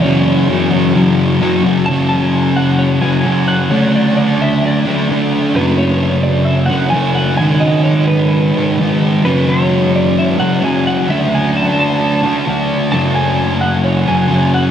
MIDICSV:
0, 0, Header, 1, 3, 480
1, 0, Start_track
1, 0, Key_signature, 3, "minor"
1, 0, Tempo, 460476
1, 39, Time_signature, 4, 2, 24, 8
1, 15333, End_track
2, 0, Start_track
2, 0, Title_t, "Clean electric guitar"
2, 0, Program_c, 0, 27
2, 20, Note_on_c, 0, 73, 82
2, 1423, Note_off_c, 0, 73, 0
2, 1939, Note_on_c, 0, 81, 98
2, 2173, Note_off_c, 0, 81, 0
2, 2177, Note_on_c, 0, 81, 106
2, 2292, Note_off_c, 0, 81, 0
2, 2292, Note_on_c, 0, 80, 106
2, 2670, Note_off_c, 0, 80, 0
2, 2674, Note_on_c, 0, 78, 89
2, 2905, Note_on_c, 0, 73, 87
2, 2920, Note_off_c, 0, 78, 0
2, 3143, Note_on_c, 0, 80, 97
2, 3156, Note_off_c, 0, 73, 0
2, 3622, Note_off_c, 0, 80, 0
2, 3626, Note_on_c, 0, 78, 77
2, 3865, Note_on_c, 0, 73, 84
2, 3876, Note_off_c, 0, 78, 0
2, 4116, Note_off_c, 0, 73, 0
2, 4124, Note_on_c, 0, 74, 82
2, 4337, Note_off_c, 0, 74, 0
2, 4350, Note_on_c, 0, 74, 79
2, 4598, Note_off_c, 0, 74, 0
2, 4605, Note_on_c, 0, 76, 82
2, 4822, Note_off_c, 0, 76, 0
2, 4858, Note_on_c, 0, 74, 70
2, 5524, Note_off_c, 0, 74, 0
2, 5799, Note_on_c, 0, 71, 82
2, 6018, Note_off_c, 0, 71, 0
2, 6023, Note_on_c, 0, 73, 92
2, 6492, Note_off_c, 0, 73, 0
2, 6497, Note_on_c, 0, 74, 84
2, 6724, Note_on_c, 0, 76, 96
2, 6752, Note_off_c, 0, 74, 0
2, 6937, Note_off_c, 0, 76, 0
2, 6942, Note_on_c, 0, 78, 92
2, 7188, Note_off_c, 0, 78, 0
2, 7192, Note_on_c, 0, 80, 96
2, 7448, Note_off_c, 0, 80, 0
2, 7452, Note_on_c, 0, 78, 81
2, 7683, Note_off_c, 0, 78, 0
2, 7687, Note_on_c, 0, 80, 99
2, 7926, Note_on_c, 0, 75, 83
2, 7948, Note_off_c, 0, 80, 0
2, 8162, Note_off_c, 0, 75, 0
2, 8166, Note_on_c, 0, 73, 77
2, 8413, Note_off_c, 0, 73, 0
2, 8417, Note_on_c, 0, 71, 75
2, 9104, Note_off_c, 0, 71, 0
2, 9641, Note_on_c, 0, 71, 78
2, 9885, Note_off_c, 0, 71, 0
2, 9889, Note_on_c, 0, 73, 76
2, 10375, Note_off_c, 0, 73, 0
2, 10379, Note_on_c, 0, 74, 83
2, 10613, Note_off_c, 0, 74, 0
2, 10619, Note_on_c, 0, 76, 78
2, 10834, Note_off_c, 0, 76, 0
2, 10838, Note_on_c, 0, 78, 80
2, 11083, Note_off_c, 0, 78, 0
2, 11098, Note_on_c, 0, 80, 94
2, 11329, Note_off_c, 0, 80, 0
2, 11333, Note_on_c, 0, 78, 89
2, 11570, Note_off_c, 0, 78, 0
2, 11571, Note_on_c, 0, 76, 89
2, 11809, Note_off_c, 0, 76, 0
2, 11827, Note_on_c, 0, 80, 98
2, 12055, Note_off_c, 0, 80, 0
2, 12059, Note_on_c, 0, 81, 92
2, 12283, Note_off_c, 0, 81, 0
2, 12295, Note_on_c, 0, 81, 87
2, 12963, Note_off_c, 0, 81, 0
2, 13468, Note_on_c, 0, 81, 111
2, 13707, Note_off_c, 0, 81, 0
2, 13711, Note_on_c, 0, 80, 100
2, 14183, Note_off_c, 0, 80, 0
2, 14187, Note_on_c, 0, 78, 86
2, 14430, Note_on_c, 0, 73, 78
2, 14437, Note_off_c, 0, 78, 0
2, 14677, Note_on_c, 0, 80, 97
2, 14679, Note_off_c, 0, 73, 0
2, 15155, Note_off_c, 0, 80, 0
2, 15159, Note_on_c, 0, 78, 81
2, 15333, Note_off_c, 0, 78, 0
2, 15333, End_track
3, 0, Start_track
3, 0, Title_t, "Distorted electric guitar"
3, 0, Program_c, 1, 30
3, 25, Note_on_c, 1, 42, 91
3, 42, Note_on_c, 1, 49, 98
3, 56, Note_on_c, 1, 54, 97
3, 493, Note_off_c, 1, 42, 0
3, 505, Note_on_c, 1, 42, 93
3, 511, Note_off_c, 1, 49, 0
3, 523, Note_off_c, 1, 54, 0
3, 524, Note_on_c, 1, 49, 106
3, 535, Note_on_c, 1, 54, 98
3, 722, Note_off_c, 1, 54, 0
3, 734, Note_on_c, 1, 54, 77
3, 754, Note_off_c, 1, 49, 0
3, 766, Note_on_c, 1, 49, 63
3, 963, Note_off_c, 1, 42, 0
3, 976, Note_on_c, 1, 42, 71
3, 983, Note_off_c, 1, 49, 0
3, 991, Note_off_c, 1, 54, 0
3, 995, Note_on_c, 1, 49, 83
3, 1003, Note_on_c, 1, 54, 88
3, 1447, Note_off_c, 1, 42, 0
3, 1460, Note_on_c, 1, 42, 85
3, 1464, Note_off_c, 1, 49, 0
3, 1476, Note_on_c, 1, 49, 86
3, 1477, Note_off_c, 1, 54, 0
3, 1490, Note_on_c, 1, 54, 95
3, 1693, Note_off_c, 1, 54, 0
3, 1705, Note_on_c, 1, 54, 74
3, 1723, Note_off_c, 1, 49, 0
3, 1735, Note_on_c, 1, 49, 64
3, 1931, Note_off_c, 1, 42, 0
3, 1934, Note_off_c, 1, 54, 0
3, 1949, Note_off_c, 1, 49, 0
3, 1952, Note_on_c, 1, 42, 82
3, 1973, Note_on_c, 1, 49, 89
3, 1983, Note_on_c, 1, 54, 98
3, 3131, Note_off_c, 1, 54, 0
3, 3136, Note_on_c, 1, 54, 71
3, 3137, Note_off_c, 1, 42, 0
3, 3139, Note_off_c, 1, 49, 0
3, 3152, Note_on_c, 1, 49, 75
3, 3172, Note_on_c, 1, 42, 58
3, 3367, Note_off_c, 1, 42, 0
3, 3377, Note_off_c, 1, 49, 0
3, 3379, Note_on_c, 1, 42, 71
3, 3400, Note_on_c, 1, 49, 81
3, 3405, Note_off_c, 1, 54, 0
3, 3409, Note_on_c, 1, 54, 78
3, 3851, Note_off_c, 1, 42, 0
3, 3852, Note_off_c, 1, 49, 0
3, 3856, Note_on_c, 1, 50, 82
3, 3866, Note_off_c, 1, 54, 0
3, 3871, Note_on_c, 1, 57, 99
3, 3888, Note_on_c, 1, 62, 98
3, 5047, Note_off_c, 1, 62, 0
3, 5050, Note_off_c, 1, 50, 0
3, 5057, Note_off_c, 1, 57, 0
3, 5060, Note_on_c, 1, 62, 91
3, 5082, Note_on_c, 1, 57, 76
3, 5097, Note_on_c, 1, 50, 61
3, 5292, Note_off_c, 1, 62, 0
3, 5294, Note_off_c, 1, 50, 0
3, 5303, Note_off_c, 1, 57, 0
3, 5306, Note_on_c, 1, 50, 80
3, 5326, Note_on_c, 1, 57, 78
3, 5336, Note_on_c, 1, 62, 86
3, 5775, Note_off_c, 1, 50, 0
3, 5776, Note_on_c, 1, 42, 99
3, 5785, Note_off_c, 1, 57, 0
3, 5790, Note_off_c, 1, 62, 0
3, 5797, Note_on_c, 1, 49, 91
3, 5813, Note_on_c, 1, 54, 95
3, 6970, Note_off_c, 1, 42, 0
3, 6971, Note_off_c, 1, 54, 0
3, 6975, Note_on_c, 1, 54, 77
3, 6981, Note_off_c, 1, 49, 0
3, 6993, Note_on_c, 1, 49, 80
3, 7007, Note_on_c, 1, 42, 61
3, 7203, Note_off_c, 1, 42, 0
3, 7216, Note_on_c, 1, 42, 77
3, 7219, Note_off_c, 1, 49, 0
3, 7233, Note_on_c, 1, 49, 92
3, 7244, Note_off_c, 1, 54, 0
3, 7248, Note_on_c, 1, 54, 90
3, 7690, Note_off_c, 1, 42, 0
3, 7696, Note_on_c, 1, 44, 88
3, 7699, Note_off_c, 1, 49, 0
3, 7719, Note_on_c, 1, 51, 92
3, 7727, Note_off_c, 1, 54, 0
3, 7733, Note_on_c, 1, 56, 91
3, 8890, Note_off_c, 1, 44, 0
3, 8893, Note_off_c, 1, 56, 0
3, 8902, Note_off_c, 1, 51, 0
3, 8905, Note_on_c, 1, 56, 80
3, 8925, Note_on_c, 1, 51, 63
3, 8939, Note_on_c, 1, 44, 68
3, 9135, Note_off_c, 1, 56, 0
3, 9145, Note_off_c, 1, 51, 0
3, 9147, Note_off_c, 1, 44, 0
3, 9160, Note_on_c, 1, 44, 72
3, 9180, Note_on_c, 1, 51, 75
3, 9197, Note_on_c, 1, 56, 80
3, 9616, Note_off_c, 1, 44, 0
3, 9620, Note_on_c, 1, 42, 79
3, 9633, Note_off_c, 1, 51, 0
3, 9641, Note_off_c, 1, 56, 0
3, 9641, Note_on_c, 1, 49, 86
3, 9662, Note_on_c, 1, 54, 98
3, 10813, Note_off_c, 1, 42, 0
3, 10823, Note_off_c, 1, 49, 0
3, 10824, Note_off_c, 1, 54, 0
3, 10828, Note_on_c, 1, 54, 80
3, 10850, Note_on_c, 1, 49, 77
3, 10863, Note_on_c, 1, 42, 70
3, 11054, Note_off_c, 1, 42, 0
3, 11066, Note_on_c, 1, 42, 81
3, 11067, Note_off_c, 1, 49, 0
3, 11082, Note_on_c, 1, 49, 77
3, 11094, Note_off_c, 1, 54, 0
3, 11098, Note_on_c, 1, 54, 87
3, 11536, Note_off_c, 1, 42, 0
3, 11543, Note_off_c, 1, 49, 0
3, 11555, Note_on_c, 1, 50, 83
3, 11566, Note_off_c, 1, 54, 0
3, 11570, Note_on_c, 1, 57, 93
3, 11587, Note_on_c, 1, 62, 101
3, 12733, Note_off_c, 1, 62, 0
3, 12740, Note_off_c, 1, 50, 0
3, 12745, Note_on_c, 1, 62, 78
3, 12747, Note_off_c, 1, 57, 0
3, 12765, Note_on_c, 1, 57, 71
3, 12782, Note_on_c, 1, 50, 60
3, 12975, Note_off_c, 1, 62, 0
3, 12982, Note_off_c, 1, 50, 0
3, 12985, Note_off_c, 1, 57, 0
3, 12994, Note_on_c, 1, 50, 72
3, 13016, Note_on_c, 1, 57, 82
3, 13022, Note_on_c, 1, 62, 80
3, 13459, Note_off_c, 1, 50, 0
3, 13464, Note_on_c, 1, 42, 88
3, 13470, Note_off_c, 1, 57, 0
3, 13474, Note_off_c, 1, 62, 0
3, 13480, Note_on_c, 1, 49, 92
3, 13494, Note_on_c, 1, 54, 107
3, 14654, Note_off_c, 1, 42, 0
3, 14658, Note_off_c, 1, 54, 0
3, 14662, Note_off_c, 1, 49, 0
3, 14662, Note_on_c, 1, 54, 85
3, 14679, Note_on_c, 1, 49, 68
3, 14695, Note_on_c, 1, 42, 74
3, 14880, Note_off_c, 1, 42, 0
3, 14893, Note_on_c, 1, 42, 76
3, 14902, Note_off_c, 1, 49, 0
3, 14915, Note_on_c, 1, 49, 90
3, 14924, Note_off_c, 1, 54, 0
3, 14929, Note_on_c, 1, 54, 88
3, 15333, Note_off_c, 1, 42, 0
3, 15333, Note_off_c, 1, 49, 0
3, 15333, Note_off_c, 1, 54, 0
3, 15333, End_track
0, 0, End_of_file